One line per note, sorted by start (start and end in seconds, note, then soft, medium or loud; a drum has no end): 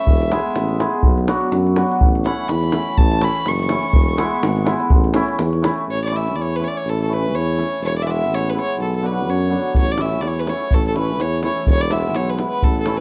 0.00 0.79 E5 medium
0.07 0.36 E1 loud
0.07 davul low medium
0.22 davul high soft
0.31 0.78 G#3 medium
0.31 0.47 B3 medium
0.31 0.48 E4 medium
0.31 0.48 G#4 medium
0.31 davul high medium
0.55 0.84 A1 medium
0.55 davul high medium
0.68 davul high soft
0.79 1.09 G#3 medium
0.79 0.95 B3 medium
0.79 0.96 E4 medium
0.79 0.96 G#4 medium
0.79 davul high medium
0.94 davul high soft
1.03 1.33 B1 loud
1.03 davul low medium
1.18 davul high soft
1.27 1.76 F#3 medium
1.27 1.44 B3 medium
1.27 1.44 D4 medium
1.27 1.44 F#4 medium
1.27 davul high medium
1.41 davul high soft
1.52 1.81 F#2 medium
1.52 davul high medium
1.67 davul high soft
1.76 2.06 F#3 medium
1.76 1.93 B3 medium
1.76 1.93 D4 medium
1.76 1.93 F#4 medium
1.76 davul high medium
1.92 davul high soft
2.01 2.30 A1 medium
2.01 davul low medium
2.15 davul high soft
2.25 2.71 E3 medium
2.25 2.41 A3 soft
2.25 2.41 C#4 medium
2.25 2.41 E4 medium
2.25 2.50 F#5 medium
2.25 davul high medium
2.48 2.78 E2 medium
2.48 2.99 B5 medium
2.48 davul high medium
2.63 davul high soft
2.72 3.19 E3 medium
2.72 2.89 A3 soft
2.72 2.89 C#4 soft
2.72 2.89 E4 medium
2.72 davul high medium
2.87 davul high soft
2.98 3.27 A1 medium
2.98 3.26 A5 medium
2.98 davul low medium
3.12 davul high soft
3.21 3.68 E3 medium
3.21 3.37 A3 medium
3.21 3.37 C#4 medium
3.21 3.38 E4 medium
3.21 3.50 B5 loud
3.21 davul high medium
3.46 3.75 F#1 medium
3.46 4.68 C#6 medium
3.46 davul high medium
3.59 davul high soft
3.69 3.99 E3 medium
3.69 3.86 A3 soft
3.69 3.86 C#4 medium
3.69 3.87 E4 medium
3.69 davul high medium
3.83 davul high soft
3.93 4.23 E1 medium
3.93 davul low loud
4.08 davul high soft
4.17 4.63 E3 medium
4.17 4.64 G#3 medium
4.17 4.34 B3 medium
4.17 4.34 E4 medium
4.17 davul high medium
4.42 4.71 G#1 loud
4.42 davul high medium
4.56 davul high soft
4.65 4.96 E3 medium
4.65 4.96 G#3 medium
4.65 4.82 B3 medium
4.65 4.83 E4 medium
4.65 davul high medium
4.80 davul high soft
4.90 5.20 A1 medium
4.90 davul low loud
5.04 davul high soft
5.13 5.61 E3 medium
5.13 5.30 A3 medium
5.13 5.31 C#4 medium
5.13 5.31 E4 loud
5.13 davul high medium
5.28 davul high soft
5.39 5.68 E2 medium
5.39 davul high medium
5.53 davul high soft
5.62 5.93 E3 medium
5.62 5.79 A3 medium
5.62 5.80 C#4 medium
5.62 5.80 E4 medium
5.62 davul high medium
5.78 davul high soft
5.88 6.37 A1 medium
5.88 6.02 C#5 medium
6.04 6.18 D5 medium
6.11 6.58 E3 medium
6.11 6.27 A3 medium
6.11 6.28 C#4 medium
6.11 6.28 E4 medium
6.16 6.37 E5 medium
6.35 6.65 E2 medium
6.35 6.43 D5 soft
6.41 6.57 C#5 medium
6.56 7.07 E3 medium
6.56 6.66 B4 medium
6.60 6.76 A3 soft
6.60 6.76 C#4 soft
6.60 6.77 E4 medium
6.64 6.69 C#5 medium
6.64 6.79 D5 medium
6.77 6.91 C#5 medium
6.85 7.35 A1 medium
6.85 7.00 A4 medium
7.02 7.15 A4 medium
7.08 7.56 E3 medium
7.08 7.25 A3 medium
7.08 7.25 C#4 soft
7.08 7.25 E4 medium
7.13 7.37 B4 medium
7.34 7.63 E2 medium
7.34 7.83 C#5 medium
7.57 7.87 E3 medium
7.57 7.73 A3 soft
7.57 7.73 C#4 soft
7.57 7.74 E4 soft
7.80 8.30 E1 medium
7.85 7.96 C#5 medium
7.98 8.04 D5 medium
8.02 8.52 E3 medium
8.02 8.54 G#3 medium
8.02 8.08 E5 medium
8.07 8.22 B3 soft
8.07 8.22 E4 medium
8.07 8.12 D5 medium
8.07 8.36 E5 medium
8.29 8.58 A1 medium
8.34 8.51 C#5 medium
8.50 8.84 E3 medium
8.50 8.57 B4 medium
8.55 8.84 G#3 soft
8.55 8.71 B3 soft
8.55 8.71 E4 medium
8.60 8.80 C#5 medium
8.77 9.28 B1 medium
8.82 8.93 A4 medium
8.96 9.07 A4 medium
9.02 9.48 D3 medium
9.02 9.48 F#3 soft
9.02 9.19 B3 soft
9.02 9.19 D4 medium
9.02 9.31 B4 medium
9.27 9.56 F#2 medium
9.27 9.76 C#5 medium
9.50 9.80 D3 soft
9.50 9.80 F#3 soft
9.50 9.66 B3 soft
9.50 9.67 D4 medium
9.75 10.24 A1 medium
9.75 9.93 C#5 medium
9.75 davul low medium
9.92 10.02 D5 medium
9.97 10.44 E3 medium
9.97 10.14 A3 soft
9.97 10.15 C#4 medium
9.97 10.15 E4 medium
9.97 10.23 E5 medium
9.97 davul high medium
10.13 davul high soft
10.21 10.51 E2 medium
10.21 10.29 D5 medium
10.21 davul high soft
10.27 10.41 C#5 medium
10.40 10.51 B4 medium
10.45 10.93 E3 medium
10.45 10.62 A3 soft
10.45 10.62 C#4 soft
10.45 10.63 E4 soft
10.45 davul high medium
10.50 10.76 C#5 medium
10.60 davul high soft
10.71 11.21 A1 medium
10.71 10.86 A4 medium
10.71 davul low medium
10.86 10.96 A4 medium
10.86 davul high soft
10.94 11.42 E3 medium
10.94 11.11 A3 medium
10.94 11.11 C#4 medium
10.94 11.12 E4 medium
10.94 davul high medium
10.98 11.23 B4 medium
11.09 davul high soft
11.19 11.48 E2 medium
11.19 11.44 C#5 medium
11.19 davul high medium
11.43 11.73 E3 medium
11.43 11.59 A3 medium
11.43 11.59 C#4 soft
11.43 11.60 E4 medium
11.43 11.66 C#5 medium
11.43 davul high medium
11.57 davul high soft
11.66 12.16 E1 medium
11.66 davul low medium
11.71 11.83 C#5 medium
11.80 11.93 D5 medium
11.80 davul high soft
11.90 12.36 E3 medium
11.90 12.37 G#3 medium
11.90 12.07 B3 medium
11.90 12.08 E4 medium
11.90 12.17 E5 medium
11.90 davul high medium
12.05 davul high soft
12.15 12.44 B1 medium
12.15 12.31 C#5 medium
12.15 davul high medium
12.30 12.40 B4 medium
12.38 12.69 E3 soft
12.38 12.69 G#3 soft
12.38 12.55 B3 soft
12.38 12.55 E4 soft
12.38 davul high medium
12.49 12.66 B4 medium
12.62 13.01 A1 medium
12.62 12.80 A4 medium
12.62 davul low medium
12.76 davul high soft
12.80 12.99 A4 medium
12.85 13.01 E3 medium
12.85 13.01 A3 soft
12.85 13.01 C#4 soft
12.85 13.01 E4 medium
12.85 davul high medium
12.97 13.01 B4 medium